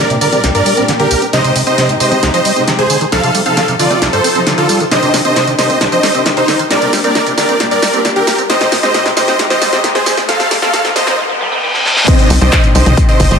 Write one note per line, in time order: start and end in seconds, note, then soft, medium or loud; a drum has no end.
0.10 0.18 A#2 medium
0.10 0.17 C3 medium
0.10 0.18 G3 medium
0.10 0.18 D4 medium
0.10 0.18 G4 medium
0.10 closed hi-hat soft
0.10 tambourine soft
0.21 0.37 A#2 medium
0.21 0.28 D3 medium
0.21 0.37 G3 medium
0.21 0.37 D4 medium
0.21 0.37 G4 medium
0.21 0.42 A#4 medium
0.21 0.42 D5 medium
0.21 open hi-hat medium
0.21 tambourine medium
0.32 0.40 C4 medium
0.32 closed hi-hat soft
0.32 mid tom medium
0.32 tambourine soft
0.44 0.51 C2 loud
0.44 0.59 A#2 medium
0.44 0.59 G3 medium
0.44 0.59 D4 medium
0.44 0.59 G4 medium
0.44 snare medium
0.44 closed hi-hat medium
0.44 tambourine soft
0.55 0.62 G2 medium
0.55 0.82 A#4 medium
0.55 0.82 D5 loud
0.55 closed hi-hat soft
0.55 tambourine soft
0.66 0.73 G3 medium
0.66 open hi-hat loud
0.66 tambourine medium
0.77 0.93 A#2 medium
0.77 0.93 G3 medium
0.77 0.84 C4 loud
0.77 0.93 D4 medium
0.77 0.93 G4 medium
0.77 closed hi-hat soft
0.77 tambourine soft
0.88 0.93 D3 medium
0.88 snare medium
0.88 closed hi-hat medium
0.88 tambourine soft
1.00 1.07 D3 medium
1.00 1.20 G4 medium
1.00 1.20 A#4 medium
1.00 closed hi-hat soft
1.11 1.15 C2 medium
1.11 open hi-hat medium
1.11 tambourine medium
1.22 1.26 C4 loud
1.22 closed hi-hat soft
1.22 tambourine soft
1.33 1.40 C3 medium
1.33 1.41 C3 medium
1.33 1.41 G#3 medium
1.33 1.41 D#4 medium
1.33 1.41 G4 medium
1.33 1.54 C5 medium
1.33 1.54 D#5 loud
1.33 snare medium
1.33 closed hi-hat medium
1.33 tambourine soft
1.44 1.51 C3 medium
1.44 1.60 C3 medium
1.44 1.60 G#3 medium
1.44 1.60 D#4 medium
1.44 1.60 G4 medium
1.44 closed hi-hat soft
1.44 tambourine soft
1.56 1.63 C3 medium
1.56 open hi-hat loud
1.56 tambourine medium
1.67 1.82 C3 medium
1.67 1.83 G#3 medium
1.67 1.74 C4 loud
1.67 1.83 D#4 medium
1.67 1.83 G4 medium
1.67 1.87 C5 medium
1.67 1.87 D#5 medium
1.67 closed hi-hat soft
1.67 tambourine soft
1.78 1.89 C3 loud
1.78 snare medium
1.78 closed hi-hat medium
1.78 tambourine soft
1.89 1.96 C3 medium
1.89 1.97 C3 medium
1.89 1.97 G#3 medium
1.89 1.97 D#4 medium
1.89 1.97 G4 medium
1.89 closed hi-hat soft
1.89 tambourine soft
2.00 2.11 C3 medium
2.00 2.16 C3 medium
2.00 2.16 G#3 medium
2.00 2.16 D#4 medium
2.00 2.16 G4 medium
2.00 2.21 C5 medium
2.00 2.21 D#5 medium
2.00 open hi-hat medium
2.00 tambourine medium
2.12 2.19 C4 medium
2.12 closed hi-hat soft
2.12 mid tom medium
2.12 tambourine soft
2.23 2.30 C2 loud
2.23 2.38 C3 medium
2.23 2.38 G#3 medium
2.23 2.38 D#4 medium
2.23 2.38 G4 medium
2.23 snare medium
2.23 closed hi-hat medium
2.23 tambourine soft
2.34 2.41 F3 medium
2.34 2.61 C5 medium
2.34 2.61 D#5 loud
2.34 closed hi-hat soft
2.34 tambourine soft
2.45 2.52 G3 medium
2.45 open hi-hat loud
2.45 tambourine medium
2.56 2.72 C3 medium
2.56 2.72 G#3 medium
2.56 2.63 C4 loud
2.56 2.72 D#4 medium
2.56 2.72 G4 medium
2.56 closed hi-hat soft
2.56 tambourine soft
2.67 2.72 D#3 medium
2.67 snare medium
2.67 closed hi-hat medium
2.67 tambourine soft
2.79 2.86 C3 medium
2.79 2.99 G#4 medium
2.79 2.99 C5 medium
2.79 closed hi-hat soft
2.79 mid tom medium
2.90 2.97 D3 medium
2.90 open hi-hat medium
2.90 tambourine medium
3.01 3.05 D#3 medium
3.01 closed hi-hat soft
3.01 tambourine soft
3.12 3.19 C2 loud
3.12 3.20 C3 medium
3.12 3.20 F3 medium
3.12 3.20 D#4 medium
3.12 3.33 A4 medium
3.12 3.20 A4 medium
3.12 3.33 F5 loud
3.12 snare medium
3.12 closed hi-hat medium
3.12 tambourine soft
3.23 3.39 C3 medium
3.23 3.31 C3 medium
3.23 3.39 F3 medium
3.23 3.39 D#4 medium
3.23 3.39 A4 medium
3.23 closed hi-hat soft
3.23 tambourine soft
3.35 3.42 G3 medium
3.35 open hi-hat loud
3.35 tambourine medium
3.46 3.61 C3 medium
3.46 3.61 F3 medium
3.46 3.53 C4 loud
3.46 3.61 D#4 medium
3.46 3.61 A4 medium
3.46 3.66 A4 medium
3.46 3.66 F5 medium
3.46 closed hi-hat soft
3.46 tambourine soft
3.57 3.61 D#3 medium
3.57 snare medium
3.57 closed hi-hat medium
3.57 tambourine soft
3.68 3.76 C3 medium
3.68 3.75 C3 medium
3.68 3.76 F3 medium
3.68 3.76 D#4 medium
3.68 3.76 A4 medium
3.68 closed hi-hat soft
3.68 tambourine soft
3.79 3.95 C3 medium
3.79 3.87 D3 medium
3.79 3.95 F3 medium
3.79 3.95 D#4 medium
3.79 4.00 F4 medium
3.79 3.95 A4 medium
3.79 4.00 D5 medium
3.79 open hi-hat medium
3.79 tambourine medium
3.90 3.98 C4 medium
3.90 closed hi-hat soft
3.90 mid tom medium
3.90 tambourine soft
4.02 4.09 C2 loud
4.02 4.17 C3 medium
4.02 4.17 F3 medium
4.02 4.18 D#4 medium
4.02 4.17 A4 medium
4.02 snare medium
4.02 closed hi-hat medium
4.02 tambourine soft
4.13 4.20 G2 medium
4.13 4.40 A4 medium
4.13 4.40 C5 loud
4.13 closed hi-hat soft
4.13 tambourine soft
4.24 4.28 C4 medium
4.24 open hi-hat loud
4.24 tambourine medium
4.35 4.51 C3 medium
4.35 4.51 F3 medium
4.35 4.40 C4 medium
4.35 4.51 D#4 medium
4.35 4.51 A4 medium
4.35 closed hi-hat soft
4.35 tambourine soft
4.46 4.54 D3 medium
4.46 snare medium
4.46 closed hi-hat medium
4.46 tambourine soft
4.58 4.68 D3 loud
4.58 4.78 F4 medium
4.58 4.78 A4 medium
4.58 closed hi-hat soft
4.69 4.80 G3 medium
4.69 open hi-hat medium
4.69 tambourine medium
4.80 4.84 D#3 medium
4.80 closed hi-hat soft
4.80 mid tom medium
4.80 tambourine soft
4.91 4.98 C3 medium
4.91 4.99 C3 medium
4.91 4.99 D#3 medium
4.91 4.99 D4 medium
4.91 4.99 G4 medium
4.91 5.12 C5 medium
4.91 5.12 D#5 loud
4.91 snare medium
4.91 closed hi-hat medium
4.91 tambourine soft
4.91 riser medium
5.02 5.10 C3 medium
5.02 5.18 C3 medium
5.02 5.18 D#3 medium
5.02 5.18 D4 medium
5.02 5.18 G4 medium
5.02 closed hi-hat soft
5.02 tambourine soft
5.14 5.21 C3 medium
5.14 snare medium
5.14 open hi-hat loud
5.14 tambourine medium
5.25 5.41 C3 medium
5.25 5.41 D#3 medium
5.25 5.32 C4 loud
5.25 5.41 D4 medium
5.25 5.41 G4 medium
5.25 5.45 C5 medium
5.25 5.45 D#5 loud
5.25 closed hi-hat soft
5.25 tambourine soft
5.36 5.47 C3 loud
5.36 snare medium
5.36 closed hi-hat medium
5.36 tambourine soft
5.47 5.54 C3 medium
5.47 5.55 C3 medium
5.47 5.55 D#3 medium
5.47 5.55 D4 medium
5.47 5.55 G4 medium
5.47 closed hi-hat soft
5.47 tambourine soft
5.58 5.69 C3 medium
5.58 5.74 C3 medium
5.58 5.74 D#3 medium
5.58 5.74 D4 medium
5.58 5.74 G4 medium
5.58 5.79 C5 medium
5.58 5.79 D#5 medium
5.58 snare medium
5.58 open hi-hat medium
5.58 tambourine medium
5.70 5.77 C4 medium
5.70 closed hi-hat soft
5.70 mid tom medium
5.70 tambourine soft
5.81 5.88 C2 loud
5.81 5.97 C3 medium
5.81 5.97 D#3 medium
5.81 5.97 D4 medium
5.81 5.97 G4 medium
5.81 snare medium
5.81 closed hi-hat medium
5.81 tambourine soft
5.92 5.99 F3 medium
5.92 6.19 C5 medium
5.92 6.19 D#5 loud
5.92 closed hi-hat soft
5.92 tambourine soft
6.03 6.10 G3 medium
6.03 snare medium
6.03 open hi-hat loud
6.03 tambourine medium
6.14 6.30 C3 medium
6.14 6.30 D#3 medium
6.14 6.22 C4 loud
6.14 6.30 D4 medium
6.14 6.30 G4 medium
6.14 closed hi-hat soft
6.14 tambourine soft
6.26 6.30 D#3 medium
6.26 snare medium
6.26 closed hi-hat medium
6.26 tambourine soft
6.37 6.44 C3 medium
6.37 6.57 D#4 medium
6.37 6.57 C5 loud
6.37 closed hi-hat soft
6.37 mid tom medium
6.48 6.55 D3 medium
6.48 snare medium
6.48 open hi-hat medium
6.48 tambourine medium
6.59 6.64 D#3 medium
6.59 closed hi-hat soft
6.59 tambourine soft
6.70 6.78 C2 loud
6.70 6.78 A#2 medium
6.70 6.78 G3 medium
6.70 6.78 D4 medium
6.70 6.78 G4 medium
6.70 6.91 A#4 medium
6.70 6.91 D5 loud
6.70 snare medium
6.70 closed hi-hat medium
6.70 tambourine soft
6.82 6.97 A#2 medium
6.82 6.89 C3 medium
6.82 6.97 G3 medium
6.82 6.97 D4 medium
6.82 6.97 G4 medium
6.82 closed hi-hat soft
6.82 tambourine soft
6.93 7.00 G3 medium
6.93 snare medium
6.93 open hi-hat loud
6.93 tambourine medium
7.04 7.20 A#2 medium
7.04 7.20 G3 medium
7.04 7.11 C4 loud
7.04 7.20 D4 medium
7.04 7.20 G4 medium
7.04 7.25 A#4 medium
7.04 7.25 D5 medium
7.04 closed hi-hat soft
7.04 tambourine soft
7.15 7.19 D3 medium
7.15 snare medium
7.15 closed hi-hat medium
7.15 tambourine soft
7.26 7.34 A#2 medium
7.26 7.34 C3 medium
7.26 7.34 G3 medium
7.26 7.34 D4 medium
7.26 7.34 G4 medium
7.26 closed hi-hat soft
7.26 tambourine soft
7.37 7.53 A#2 medium
7.37 7.45 D3 medium
7.37 7.53 G3 medium
7.37 7.53 D4 medium
7.37 7.53 G4 medium
7.37 7.58 A#4 medium
7.37 7.58 D5 medium
7.37 snare medium
7.37 open hi-hat medium
7.37 tambourine medium
7.49 7.56 C4 medium
7.49 closed hi-hat soft
7.49 mid tom medium
7.49 tambourine soft
7.60 7.67 C2 loud
7.60 7.76 A#2 medium
7.60 7.76 G3 medium
7.60 7.76 D4 medium
7.60 7.76 G4 medium
7.60 snare medium
7.60 closed hi-hat medium
7.60 tambourine soft
7.71 7.78 G2 medium
7.71 7.99 A#4 medium
7.71 7.99 D5 loud
7.71 closed hi-hat soft
7.71 tambourine soft
7.82 7.89 G3 medium
7.82 snare medium
7.82 open hi-hat loud
7.82 tambourine medium
7.93 8.09 A#2 medium
7.93 8.09 G3 medium
7.93 8.01 C4 loud
7.93 8.09 D4 loud
7.93 8.09 G4 medium
7.93 closed hi-hat soft
7.93 tambourine soft
8.05 8.09 D3 medium
8.05 snare medium
8.05 closed hi-hat medium
8.05 tambourine soft
8.16 8.23 D3 medium
8.16 8.37 G4 medium
8.16 8.37 A#4 medium
8.16 closed hi-hat soft
8.27 8.31 C2 medium
8.27 snare medium
8.27 open hi-hat medium
8.27 tambourine medium
8.38 8.43 C4 loud
8.38 closed hi-hat soft
8.38 tambourine soft
8.49 8.57 C3 medium
8.49 8.57 G#3 medium
8.49 8.57 D#4 medium
8.49 8.57 G4 medium
8.49 8.70 C5 medium
8.49 8.70 D#5 loud
8.49 snare medium
8.49 closed hi-hat medium
8.49 tambourine soft
8.61 8.76 C3 medium
8.61 8.68 C3 medium
8.61 8.76 G#3 medium
8.61 8.76 D#4 medium
8.61 8.76 G4 medium
8.61 snare medium
8.61 closed hi-hat soft
8.61 tambourine soft
8.72 8.79 C3 medium
8.72 snare medium
8.72 open hi-hat loud
8.72 tambourine medium
8.83 8.99 C3 medium
8.83 8.99 G#3 medium
8.83 8.90 C4 loud
8.83 8.99 D#4 medium
8.83 8.99 G4 medium
8.83 9.04 C5 medium
8.83 9.04 D#5 loud
8.83 snare medium
8.83 closed hi-hat soft
8.83 tambourine soft
8.94 9.05 C3 loud
8.94 snare loud
8.94 closed hi-hat medium
8.94 tambourine soft
9.05 9.13 C3 medium
9.05 9.13 G#3 medium
9.05 9.13 D#4 medium
9.05 9.13 G4 medium
9.05 snare medium
9.05 closed hi-hat soft
9.05 tambourine soft
9.17 9.32 C3 medium
9.17 9.27 C3 medium
9.17 9.32 G#3 loud
9.17 9.32 D#4 loud
9.17 9.32 G4 loud
9.17 9.37 C5 medium
9.17 9.37 D#5 medium
9.17 snare medium
9.17 open hi-hat medium
9.17 tambourine medium
9.28 9.35 C4 medium
9.28 snare medium
9.28 closed hi-hat soft
9.28 mid tom medium
9.28 tambourine soft
9.39 9.46 C2 loud
9.39 9.55 C3 medium
9.39 9.55 G#3 medium
9.39 9.55 D#4 medium
9.39 9.55 G4 medium
9.39 snare loud
9.39 closed hi-hat medium
9.39 tambourine soft
9.50 9.57 F3 medium
9.50 9.78 C5 medium
9.50 9.78 D#5 loud
9.50 snare medium
9.50 closed hi-hat soft
9.50 tambourine soft
9.62 9.69 G3 medium
9.62 snare medium
9.62 open hi-hat loud
9.62 tambourine medium
9.73 9.88 C3 medium
9.73 9.88 G#3 medium
9.73 9.80 C4 loud
9.73 9.88 D#4 medium
9.73 9.88 G4 medium
9.73 snare medium
9.73 closed hi-hat soft
9.73 tambourine soft
9.84 9.88 D#3 medium
9.84 snare loud
9.84 closed hi-hat medium
9.84 tambourine soft
9.95 10.02 C3 medium
9.95 10.16 G#4 medium
9.95 10.16 C5 loud
9.95 snare medium
9.95 closed hi-hat soft
9.95 mid tom medium
10.06 10.13 D3 medium
10.06 snare loud
10.06 open hi-hat medium
10.06 tambourine medium
10.17 10.22 D#3 medium
10.17 snare medium
10.17 closed hi-hat soft
10.17 tambourine soft
10.29 10.36 C2 loud
10.29 10.36 C3 medium
10.29 10.36 A3 loud
10.29 10.36 D#4 loud
10.29 10.36 F4 medium
10.29 10.49 A4 medium
10.29 10.49 F5 loud
10.29 snare loud
10.29 closed hi-hat medium
10.29 tambourine soft
10.40 10.56 C3 medium
10.40 10.47 C3 medium
10.40 10.56 A3 medium
10.40 10.55 D#4 medium
10.40 10.55 F4 medium
10.40 snare medium
10.40 closed hi-hat soft
10.40 tambourine soft
10.51 10.58 G3 medium
10.51 snare loud
10.51 open hi-hat loud
10.51 tambourine medium
10.62 10.78 C3 medium
10.62 10.78 A3 medium
10.62 10.69 C4 loud
10.62 10.78 D#4 medium
10.62 10.78 F4 medium
10.62 10.83 A4 medium
10.62 10.83 F5 medium
10.62 snare medium
10.62 closed hi-hat soft
10.62 tambourine soft
10.73 10.78 D#3 medium
10.73 snare loud
10.73 closed hi-hat medium
10.73 tambourine soft
10.84 10.92 C3 medium
10.84 10.92 A3 medium
10.84 10.92 D#4 medium
10.84 10.92 F4 medium
10.84 snare medium
10.84 closed hi-hat soft
10.84 tambourine soft
10.96 11.11 C3 medium
10.96 11.03 D3 medium
10.96 11.11 A3 loud
10.96 11.11 D#4 loud
10.96 11.11 F4 medium
10.96 11.16 C5 medium
10.96 11.16 D#5 medium
10.96 snare loud
10.96 open hi-hat medium
10.96 tambourine medium
11.07 11.14 C4 medium
11.07 snare medium
11.07 closed hi-hat soft
11.07 mid tom medium
11.07 tambourine soft
11.18 11.25 C2 loud
11.18 reverse cymbal medium
11.29 11.37 G2 medium
11.41 11.48 G3 medium
11.52 11.59 C4 loud
11.63 11.67 D#3 medium
11.74 11.81 D3 medium
11.74 snare medium
11.85 11.90 C2 medium
11.85 snare medium
11.97 12.01 C4 loud
11.97 snare medium
12.08 12.18 C3 medium
12.08 12.16 D#3 medium
12.08 12.16 C4 medium
12.08 12.16 D4 medium
12.08 12.16 G4 medium
12.08 12.28 C5 medium
12.08 12.28 D#5 loud
12.08 kick loud
12.08 closed hi-hat medium
12.08 crash loud
12.08 tambourine soft
12.19 12.30 C3 medium
12.19 12.35 D#3 medium
12.19 12.35 C4 medium
12.19 12.35 D4 medium
12.19 12.35 G4 medium
12.19 closed hi-hat soft
12.19 tambourine soft
12.30 12.39 C2 medium
12.30 12.37 C3 medium
12.30 open hi-hat loud
12.30 tambourine medium
12.41 12.50 C2 medium
12.41 12.57 D#3 medium
12.41 12.52 G3 medium
12.41 12.57 C4 medium
12.41 12.57 D4 medium
12.41 12.57 G4 medium
12.41 12.62 C5 medium
12.41 12.62 D#5 loud
12.41 closed hi-hat soft
12.41 tambourine soft
12.53 12.60 C3 medium
12.53 kick loud
12.53 clap loud
12.53 closed hi-hat medium
12.53 tambourine soft
12.64 12.74 A#2 loud
12.64 12.72 D#3 medium
12.64 12.72 C4 medium
12.64 12.72 D4 medium
12.64 12.72 G4 medium
12.64 closed hi-hat soft
12.64 tambourine soft
12.75 12.84 C2 loud
12.75 12.91 D#3 medium
12.75 12.82 F3 medium
12.75 12.91 C4 medium
12.75 12.91 D4 medium
12.75 12.91 G4 medium
12.75 12.96 C5 medium
12.75 12.96 D#5 medium
12.75 open hi-hat medium
12.75 tambourine medium
12.86 12.95 C2 medium
12.86 12.93 D#3 loud
12.86 closed hi-hat soft
12.86 mid tom medium
12.86 tambourine soft
12.97 13.08 A#2 medium
12.97 13.13 D#3 medium
12.97 13.13 C4 medium
12.97 13.13 D4 medium
12.97 13.13 G4 medium
12.97 kick loud
12.97 closed hi-hat medium
12.97 tambourine soft
13.09 13.19 C3 medium
13.09 13.36 C5 medium
13.09 13.36 D#5 loud
13.09 closed hi-hat soft
13.09 tambourine soft
13.20 13.29 G1 loud
13.20 13.27 C3 medium
13.20 kick medium
13.20 open hi-hat loud
13.20 tambourine medium
13.31 13.39 G1 medium
13.31 13.39 D#3 loud
13.31 13.39 G3 medium
13.31 13.39 C4 medium
13.31 13.39 D4 medium
13.31 13.39 G4 medium
13.31 closed hi-hat soft
13.31 tambourine soft